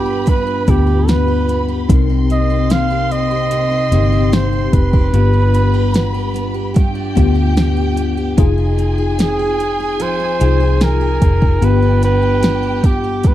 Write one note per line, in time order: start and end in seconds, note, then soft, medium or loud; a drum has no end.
0.00 0.63 G1 loud
0.00 0.25 G2 medium
0.00 1.91 G2 medium
0.00 0.52 D3 medium
0.00 0.19 B3 medium
0.00 0.66 B3 medium
0.00 0.46 D4 medium
0.00 0.19 F4 medium
0.00 0.20 G4 medium
0.00 0.31 G4 medium
0.00 1.04 B4 medium
0.00 1.04 B5 medium
0.06 0.86 G4 medium
0.26 1.97 G2 medium
0.26 0.71 B4 medium
0.26 kick medium
0.26 closed hi-hat medium
0.47 1.97 D4 medium
0.67 1.85 D2 medium
0.67 1.06 B3 medium
0.67 1.83 B3 medium
0.67 1.83 F4 medium
0.67 1.84 G4 medium
0.67 1.11 G4 medium
0.67 kick medium
0.67 closed hi-hat medium
0.87 1.27 G4 medium
1.08 1.47 B3 medium
1.08 1.88 B4 medium
1.08 1.70 B4 medium
1.08 1.88 B5 medium
1.08 snare loud
1.08 closed hi-hat medium
1.28 1.68 G4 medium
1.48 1.97 B3 medium
1.48 closed hi-hat medium
1.68 2.50 G4 medium
1.89 3.93 C2 loud
1.89 3.50 C3 medium
1.89 3.07 C3 medium
1.89 3.43 C4 medium
1.89 5.10 C4 medium
1.89 3.43 D#4 medium
1.89 3.44 A#4 medium
1.89 5.10 C6 medium
1.89 kick loud
1.89 closed hi-hat loud
2.10 3.70 D#4 medium
2.29 2.69 A#3 medium
2.29 2.73 D#5 medium
2.29 closed hi-hat medium
2.50 2.90 G4 medium
2.70 3.10 A#3 medium
2.70 3.13 F5 loud
2.70 snare loud
2.70 closed hi-hat medium
2.90 3.30 G4 medium
3.11 3.91 A#3 soft
3.11 4.34 D#5 loud
3.11 closed hi-hat medium
3.31 4.12 G4 medium
3.51 5.22 C3 medium
3.51 closed hi-hat medium
3.71 5.21 D#4 medium
3.92 4.69 G1 medium
3.92 4.31 A#3 medium
3.92 5.07 C4 medium
3.92 5.08 D#4 medium
3.92 5.08 G4 medium
3.92 closed hi-hat medium
4.12 4.52 G4 medium
4.32 4.73 A#3 medium
4.32 4.75 C5 medium
4.32 snare loud
4.32 closed hi-hat medium
4.53 4.93 G4 medium
4.73 5.11 F1 medium
4.73 6.35 B4 medium
4.73 kick medium
4.73 closed hi-hat medium
4.93 5.73 G4 medium
4.93 kick medium
5.13 7.12 G1 loud
5.13 6.73 G2 medium
5.13 6.31 G2 medium
5.13 6.67 B3 medium
5.13 6.68 F4 medium
5.13 6.68 G4 medium
5.13 6.72 B4 medium
5.13 6.72 B5 medium
5.13 closed hi-hat loud
5.33 6.94 D4 medium
5.54 5.92 B3 medium
5.54 closed hi-hat medium
5.74 6.13 G4 medium
5.93 6.33 B3 medium
5.93 snare loud
5.93 closed hi-hat loud
6.14 6.53 G4 medium
6.34 7.14 B3 medium
6.34 closed hi-hat medium
6.54 7.34 G4 medium
6.74 8.45 G2 medium
6.74 8.35 G4 medium
6.74 8.35 G5 loud
6.74 kick medium
6.74 closed hi-hat medium
6.95 8.45 D4 medium
7.15 8.34 D2 medium
7.15 8.31 B3 medium
7.15 7.55 B3 medium
7.15 8.32 F4 medium
7.15 8.32 G4 medium
7.15 kick medium
7.15 closed hi-hat medium
7.35 7.76 G4 medium
7.56 7.95 B3 medium
7.56 snare loud
7.56 closed hi-hat medium
7.77 8.16 G4 medium
7.96 8.46 B3 medium
7.96 closed hi-hat medium
8.17 8.46 G4 medium
8.37 10.37 F1 loud
8.37 9.99 F3 medium
8.37 9.92 D#4 medium
8.37 9.92 F4 medium
8.37 11.58 G#4 medium
8.37 9.92 G#4 loud
8.37 11.58 G#5 loud
8.37 kick loud
8.37 closed hi-hat loud
8.58 10.19 D#4 medium
8.78 9.17 C4 medium
8.78 closed hi-hat medium
8.98 9.38 G#4 medium
9.18 9.58 C4 medium
9.18 10.04 G#4 medium
9.18 snare loud
9.18 closed hi-hat medium
9.39 9.79 G#4 medium
9.59 10.39 C4 medium
9.59 closed hi-hat medium
9.80 10.59 G#4 medium
10.00 12.05 F3 medium
10.00 10.82 C5 loud
10.00 closed hi-hat medium
10.20 11.70 D#4 medium
10.40 11.18 C2 medium
10.40 10.79 C4 medium
10.40 11.56 D#4 medium
10.40 11.56 F4 medium
10.40 11.56 G#4 medium
10.40 closed hi-hat medium
10.60 11.00 G#4 medium
10.80 11.20 C4 medium
10.80 11.66 A#4 medium
10.80 snare loud
10.80 closed hi-hat medium
11.01 11.40 G#4 medium
11.21 11.59 F1 medium
11.21 11.70 C4 medium
11.21 kick medium
11.21 closed hi-hat medium
11.42 11.70 G#4 medium
11.42 kick medium
11.61 13.34 G1 loud
11.61 13.23 G2 medium
11.61 12.80 G2 medium
11.61 13.16 B3 medium
11.61 13.16 F4 medium
11.61 13.34 G4 medium
11.61 13.16 G4 medium
11.61 12.04 B4 loud
11.61 13.34 G5 medium
11.61 closed hi-hat loud
11.82 13.34 D4 medium
12.02 12.41 B3 medium
12.02 12.88 B4 loud
12.02 closed hi-hat medium
12.22 12.62 G4 medium
12.42 12.82 B3 medium
12.42 snare loud
12.42 closed hi-hat medium
12.63 13.03 G4 medium
12.83 13.34 B3 soft
12.83 13.28 G4 medium
12.83 kick medium
12.83 closed hi-hat medium
13.04 13.34 G4 medium
13.24 13.34 G2 medium
13.24 13.34 B4 medium
13.24 kick medium
13.24 closed hi-hat medium